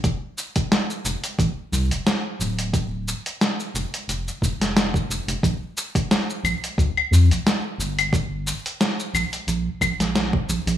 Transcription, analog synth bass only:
X:1
M:4/4
L:1/16
Q:"Swing 16ths" 1/4=89
K:F
V:1 name="Analog synth bass" clef=bass
F,,, z4 z F,,, z A,,, z C,, F,,, z2 D,,,2- | D,,,2 z4 F,,, z F,,, z F,,, F,,,2 z F,,, F,,, | B,,, z4 z B,,, z D,, z F,, B,,, z2 G,,,2- | G,,,2 z4 B,,, z B,,, z B,,, B,,,2 z B,,, B,,, |]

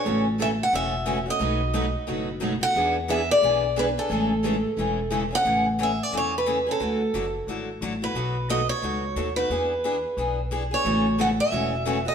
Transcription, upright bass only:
X:1
M:4/4
L:1/8
Q:"Swing" 1/4=178
K:A
V:1 name="Upright bass" clef=bass
A,,,4 E,,,4 | B,,,4 F,,,4 | E,,4 B,,,4 | A,,,4 E,,,4 |
A,,,4 E,,4 | D,,2 F,,,2 G,,,2 A,,,2 | B,,,4 C,,2 ^D,,2 | E,,4 B,,,4 |
A,,,4 E,,,4 |]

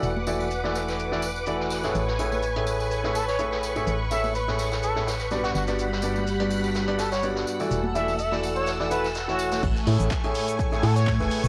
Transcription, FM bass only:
X:1
M:4/4
L:1/16
Q:"Swing 16ths" 1/4=125
K:A
V:1 name="FM bass" clef=bass
E,,,16 | A,,,16 | A,,,12- A,,,2 =G,,,2- | =G,,,12- G,,,2 z2 |
E,,,16 | A,,, z A,, A,,, z6 A,,3 E,,, z E,,, |]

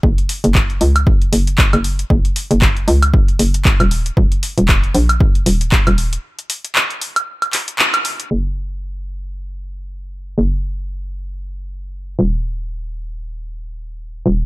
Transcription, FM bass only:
X:1
M:4/4
L:1/16
Q:"Swing 16ths" 1/4=116
K:D#m
V:1 name="FM bass" clef=bass
F,,, z2 F,,,2 z C,,2 z2 F,,,2 z F,,,2 z | F,,, z2 F,,,2 z C,,2 z2 F,,,2 z D,,,2 z | D,,, z2 D,,,2 z A,,,2 z2 D,,,2 z D,,,2 z | z16 |
F,,,16 | F,,,12- F,,,2 D,,,2- | D,,,12- D,,,2 D,,,2 |]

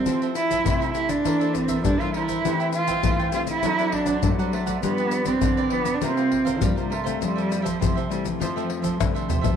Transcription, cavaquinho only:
X:1
M:4/4
L:1/16
Q:1/4=100
K:F
V:1 name="Cavaquinho"
[FAce] [Ace] z [Ace] [FAce] [Ace]3 [EBce] [Bce] z [Bce]2 [Bce] [EBce] [Bce] | [Aceg] [ceg] z [ceg] [Aceg] [ceg]3 [Dcd^f] [cdf] z [cdf]2 [cdf] [Dcdf] [cdf] | [FG=Bd] [GBd] z [GBd] [FGBd] [GBd]3 [F_Bcf] [Bcf] z [Bcf]2 [Bcf] [FBcf] [Bcf] | [FAce] [Ace] z [Ace] [FAce] [Ace]3 [FAce] [Ace] z [Ace]2 [Ace] [FAce] [Ace] |]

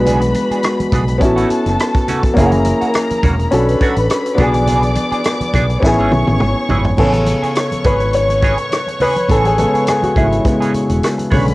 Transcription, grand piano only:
X:1
M:4/4
L:1/16
Q:"Swing 16ths" 1/4=104
K:A
V:1 name="Grand piano"
[G,B,DF]8 [B,CEF]8 | [^A,CEG]8 [CDF=A]6 [B,DFG]2- | [B,DFG]8 [B,CEG]8 | A6 B2 c6 B2 |
A G A2 G F E6 z4 |]
V:2 name="Grand piano" clef=bass
z16 | z16 | z16 | [C,B,G]6 z8 z2 |
z2 [C,G,B,]6 [C,G,B,]2 z4 [D,G,C]2 |]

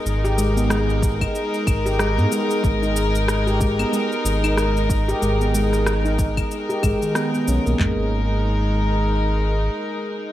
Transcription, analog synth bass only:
X:1
M:4/4
L:1/16
Q:"Swing 16ths" 1/4=93
K:G#m
V:1 name="Analog synth bass" clef=bass
G,,,6- G,,, z3 G,,,3 G,, z2 | G,,,6- G,,, z3 G,,,4- G,,, z | G,,,6- G,,, z3 G,,, z3 B,,, B,,, | G,,,12 z4 |]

